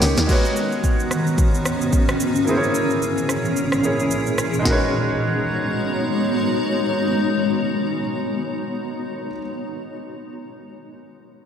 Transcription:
0.00 0.16 C#2 medium
0.00 0.28 D#3 medium
0.00 0.29 A#3 medium
0.00 0.29 G4 medium
0.00 0.30 C#5 medium
0.00 snare loud
0.00 open hi-hat medium
0.00 shaker loud
0.17 0.28 D#2 medium
0.17 snare loud
0.17 shaker medium
0.26 2.45 G#2 medium
0.26 2.45 D#3 medium
0.26 2.42 G#3 medium
0.26 2.45 B3 medium
0.26 4.61 C#4 medium
0.26 2.43 F#4 medium
0.26 2.45 F#4 medium
0.26 2.43 A#4 medium
0.26 2.45 A#5 medium
0.26 kick loud
0.26 crash medium
0.26 shaker medium
0.31 2.44 B4 medium
0.31 2.45 C#5 medium
0.45 shaker soft
0.56 shaker loud
0.72 shaker soft
0.84 kick medium
0.84 shaker medium
1.00 shaker medium
1.11 cross-stick medium
1.11 shaker medium
1.27 shaker soft
1.38 kick loud
1.38 shaker medium
1.54 shaker soft
1.65 cross-stick medium
1.65 shaker medium
1.81 shaker medium
1.93 kick medium
1.93 shaker medium
2.08 cross-stick loud
2.08 shaker medium
2.20 shaker loud
2.36 shaker medium
2.44 4.63 A#2 medium
2.44 4.63 E3 medium
2.44 3.79 A#3 medium
2.44 3.80 E4 medium
2.44 4.63 G#4 medium
2.44 shaker medium
2.49 3.81 G#4 medium
2.49 2.57 C5 medium
2.57 3.84 C#5 medium
2.63 shaker medium
2.74 shaker medium
2.90 shaker soft
3.02 shaker medium
3.18 shaker medium
3.29 cross-stick medium
3.29 shaker medium
3.45 shaker soft
3.56 shaker medium
3.72 cross-stick medium
3.72 shaker soft
3.83 4.65 A#3 medium
3.83 4.65 E4 medium
3.83 4.66 G#4 medium
3.83 4.66 C#5 medium
3.83 shaker medium
4.00 shaker medium
4.11 shaker medium
4.26 shaker medium
4.38 cross-stick medium
4.38 shaker medium
4.54 shaker medium
4.59 9.27 G#3 medium
4.59 9.29 D#4 medium
4.64 9.33 G#3 medium
4.64 9.33 B3 medium
4.64 9.32 D#4 medium
4.64 9.32 F#4 medium
4.64 9.33 F#4 medium
4.64 9.35 A#4 medium
4.64 9.33 C#5 medium
4.64 9.33 A#5 medium
4.64 kick medium
4.64 snare loud
4.70 9.37 B4 medium
4.70 9.40 C#5 medium

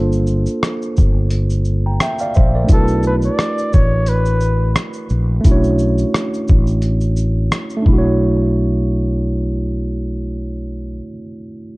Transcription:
0.00 0.46 G1 loud
0.00 2.29 A#3 medium
0.00 2.30 D4 medium
0.00 2.31 F4 medium
0.00 1.64 A4 medium
0.00 1.65 C5 medium
0.12 shaker soft
0.27 shaker soft
0.46 shaker soft
0.63 cross-stick loud
0.63 closed hi-hat medium
0.63 shaker medium
0.82 shaker soft
0.97 1.97 G1 medium
0.97 kick loud
0.97 shaker medium
1.30 closed hi-hat medium
1.30 shaker medium
1.50 shaker soft
1.65 shaker soft
1.86 2.00 G5 soft
1.86 2.00 A#5 soft
2.00 2.20 E5 medium
2.00 2.19 G5 medium
2.00 cross-stick loud
2.00 closed hi-hat medium
2.00 shaker medium
2.19 2.35 D5 medium
2.19 2.34 F5 medium
2.19 shaker soft
2.34 2.65 A#1 medium
2.34 2.54 C5 medium
2.34 2.54 E5 medium
2.34 kick medium
2.34 shaker soft
2.55 2.88 A#4 soft
2.55 2.87 D5 medium
2.64 5.39 A3 medium
2.64 5.40 D4 medium
2.69 3.28 B1 loud
2.69 5.41 E4 medium
2.69 5.43 F#4 medium
2.69 kick loud
2.69 closed hi-hat medium
2.69 shaker medium
2.73 3.03 A4 loud
2.73 5.44 B4 medium
2.88 shaker medium
3.03 shaker medium
3.07 3.15 B4 loud
3.22 3.75 D5 loud
3.22 shaker soft
3.39 cross-stick loud
3.39 closed hi-hat medium
3.39 shaker medium
3.58 shaker soft
3.73 4.73 A1 loud
3.73 4.10 C#5 loud
3.73 kick medium
3.73 shaker medium
4.06 4.77 B4 medium
4.06 closed hi-hat medium
4.06 shaker medium
4.26 shaker soft
4.41 shaker medium
4.76 cross-stick loud
4.76 closed hi-hat medium
4.76 shaker medium
4.93 shaker soft
5.09 5.40 A#1 medium
5.09 shaker soft
5.41 7.76 A3 medium
5.41 5.52 C#4 medium
5.41 closed hi-hat medium
5.41 shaker medium
5.45 6.03 B1 loud
5.45 7.83 E4 medium
5.45 kick loud
5.49 7.81 D4 medium
5.49 7.84 F#4 medium
5.49 7.86 C#5 medium
5.64 shaker soft
5.79 shaker medium
5.98 shaker soft
6.14 cross-stick loud
6.14 closed hi-hat medium
6.14 shaker medium
6.34 shaker soft
6.48 7.48 A1 loud
6.48 kick loud
6.48 shaker medium
6.67 shaker soft
6.82 closed hi-hat medium
6.82 shaker medium
7.01 shaker soft
7.16 shaker medium
7.52 cross-stick loud
7.52 closed hi-hat medium
7.52 shaker medium
7.70 shaker soft
7.77 10.91 A3 medium
7.82 11.00 B1 medium
7.82 10.96 D4 medium
7.82 kick loud
7.88 11.01 E4 medium
7.93 11.07 F#4 medium
7.98 11.12 C#5 medium

